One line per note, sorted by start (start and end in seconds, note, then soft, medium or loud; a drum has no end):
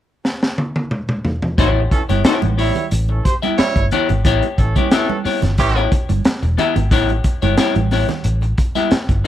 0.25 snare medium
0.43 snare medium
0.58 high tom medium
0.76 high tom medium
0.91 mid tom medium
1.09 mid tom medium
1.25 floor tom loud
1.42 floor tom loud
1.58 1.86 A1 medium
1.58 1.69 G3 medium
1.58 1.79 B3 medium
1.58 1.69 E4 medium
1.58 1.79 E4 medium
1.58 1.80 G4 loud
1.58 1.69 C#5 loud
1.58 1.80 C#5 loud
1.58 kick loud
1.58 closed hi-hat medium
1.58 muted conga soft
1.91 2.02 E3 medium
1.91 2.02 C#4 medium
1.91 2.02 A4 medium
1.91 muted clean electric guitar stroke soft
1.91 kick medium
1.91 closed hi-hat medium
2.09 2.22 G1 medium
2.09 2.22 B3 medium
2.09 2.22 E4 medium
2.09 2.22 G4 medium
2.09 2.22 C#5 medium
2.09 closed hi-hat medium
2.09 high conga medium
2.24 2.36 E3 medium
2.24 2.46 B3 medium
2.24 2.36 C#4 medium
2.24 2.42 E4 medium
2.24 2.42 G4 medium
2.24 2.36 A4 loud
2.24 2.41 C#5 medium
2.24 muted fingered electric bass stroke soft
2.24 snare loud
2.24 closed hi-hat loud
2.24 muted conga soft
2.42 2.70 A1 medium
2.42 muted clean electric guitar stroke soft
2.42 closed hi-hat soft
2.42 muted conga soft
2.42 high conga medium
2.57 2.85 G3 loud
2.57 2.72 B3 medium
2.57 2.72 E4 medium
2.57 2.85 E4 loud
2.57 2.72 G4 medium
2.57 2.85 C#5 loud
2.57 2.73 C#5 medium
2.57 open hi-hat medium
2.75 muted clean electric guitar stroke medium
2.75 closed hi-hat medium
2.75 low conga medium
2.91 3.19 A1 loud
2.91 muted clean electric guitar stroke soft
2.91 closed hi-hat loud
2.91 muted conga soft
3.09 3.22 E3 medium
3.09 3.22 C#4 medium
3.09 3.22 A4 medium
3.09 muted clean electric guitar stroke soft
3.09 muted conga soft
3.25 3.36 G4 medium
3.25 3.35 C5 medium
3.25 kick medium
3.25 closed hi-hat medium
3.42 3.59 B3 medium
3.42 3.59 E4 medium
3.42 3.59 G4 medium
3.42 3.58 E5 medium
3.42 closed hi-hat soft
3.42 high conga medium
3.58 3.85 G3 loud
3.58 3.85 E4 loud
3.58 3.85 C#5 loud
3.58 muted fingered electric bass stroke medium
3.58 snare medium
3.58 closed hi-hat medium
3.58 muted conga soft
3.76 3.89 G1 medium
3.76 muted clean electric guitar stroke soft
3.76 kick medium
3.76 closed hi-hat soft
3.76 muted conga soft
3.91 4.10 B3 medium
3.91 4.09 E4 medium
3.91 4.09 G4 medium
3.91 4.08 C#5 loud
3.91 closed hi-hat medium
3.91 low conga medium
4.09 4.23 G#1 medium
4.09 muted clean electric guitar stroke soft
4.09 closed hi-hat soft
4.09 low conga medium
4.25 4.40 A1 loud
4.25 4.43 B3 medium
4.25 4.43 E4 medium
4.25 4.43 G4 loud
4.25 4.44 C#5 loud
4.25 kick loud
4.25 closed hi-hat medium
4.25 muted conga soft
4.42 closed hi-hat soft
4.42 muted conga soft
4.58 4.73 A1 medium
4.58 4.73 E3 medium
4.58 4.73 C#4 medium
4.58 4.73 A4 medium
4.58 muted clean electric guitar stroke medium
4.58 kick medium
4.58 closed hi-hat medium
4.76 4.89 E3 medium
4.76 4.89 B3 medium
4.76 4.89 C#4 medium
4.76 4.89 E4 medium
4.76 4.89 G4 medium
4.76 4.88 C#5 medium
4.76 kick medium
4.76 closed hi-hat soft
4.76 high conga medium
4.91 5.19 E3 medium
4.91 5.09 B3 medium
4.91 5.18 C#4 loud
4.91 5.09 E4 medium
4.91 5.08 G4 medium
4.91 5.18 A4 loud
4.91 5.09 E5 medium
4.91 snare loud
4.91 closed hi-hat loud
4.91 muted conga soft
5.09 muted clean electric guitar stroke soft
5.09 muted conga soft
5.09 high conga medium
5.25 5.39 B3 medium
5.25 5.39 E4 medium
5.25 5.39 G4 medium
5.25 5.40 C#5 medium
5.25 muted fingered electric bass stroke soft
5.25 snare soft
5.25 open hi-hat medium
5.42 5.59 G1 medium
5.42 muted clean electric guitar stroke soft
5.42 snare soft
5.42 closed hi-hat medium
5.42 low conga medium
5.58 5.86 A1 loud
5.58 5.85 E3 loud
5.58 5.85 C#4 loud
5.58 5.85 G4 loud
5.58 muted clean electric guitar stroke soft
5.58 kick medium
5.58 closed hi-hat medium
5.58 muted conga soft
5.76 5.91 B3 medium
5.76 5.91 E4 medium
5.76 5.91 G4 medium
5.76 5.92 C#5 medium
5.76 closed hi-hat soft
5.92 muted clean electric guitar stroke soft
5.92 kick loud
5.92 closed hi-hat medium
6.09 6.22 G1 medium
6.09 muted clean electric guitar stroke soft
6.09 closed hi-hat medium
6.09 high conga medium
6.25 snare loud
6.25 closed hi-hat medium
6.25 muted conga soft
6.43 6.56 E1 medium
6.43 muted clean electric guitar stroke soft
6.43 closed hi-hat soft
6.43 muted conga soft
6.58 6.76 B3 loud
6.58 6.76 E4 medium
6.58 6.75 G4 medium
6.58 6.76 E5 loud
6.58 closed hi-hat medium
6.58 low conga medium
6.76 6.92 G#1 medium
6.76 muted clean electric guitar stroke soft
6.76 closed hi-hat soft
6.76 low conga medium
6.91 7.19 A1 loud
6.91 7.09 B3 medium
6.91 7.10 E4 loud
6.91 7.10 G4 loud
6.91 7.10 C#5 loud
6.91 kick loud
6.91 closed hi-hat medium
7.08 closed hi-hat soft
7.08 muted conga soft
7.24 muted clean electric guitar stroke soft
7.24 kick loud
7.24 closed hi-hat medium
7.42 7.56 G1 medium
7.42 7.55 B3 medium
7.42 7.55 E4 medium
7.42 7.55 G4 medium
7.42 7.55 C#5 medium
7.42 closed hi-hat medium
7.42 high conga medium
7.57 7.76 B3 medium
7.57 7.75 E4 medium
7.57 7.75 G4 medium
7.57 7.74 C#5 medium
7.57 snare loud
7.57 closed hi-hat loud
7.75 8.03 A1 medium
7.75 muted clean electric guitar stroke soft
7.75 closed hi-hat soft
7.75 muted conga soft
7.75 high conga medium
7.91 8.06 B3 medium
7.91 8.06 E4 medium
7.91 8.06 G4 medium
7.91 8.06 C#5 medium
7.91 snare soft
7.91 open hi-hat medium
8.09 muted clean electric guitar stroke soft
8.09 snare soft
8.09 closed hi-hat medium
8.09 low conga medium
8.24 8.52 A1 medium
8.24 muted clean electric guitar stroke soft
8.24 closed hi-hat medium
8.41 muted clean electric guitar stroke soft
8.41 closed hi-hat soft
8.41 muted conga soft
8.58 kick loud
8.58 closed hi-hat medium
8.75 8.92 B3 medium
8.75 8.92 E4 medium
8.75 8.92 G4 medium
8.75 8.91 E5 medium
8.75 closed hi-hat medium
8.75 high conga medium
8.91 muted fingered electric bass stroke medium
8.91 snare loud
8.91 closed hi-hat medium
8.91 muted conga soft
9.09 9.22 G1 medium
9.09 muted clean electric guitar stroke soft
9.09 kick medium
9.09 closed hi-hat soft
9.09 muted conga soft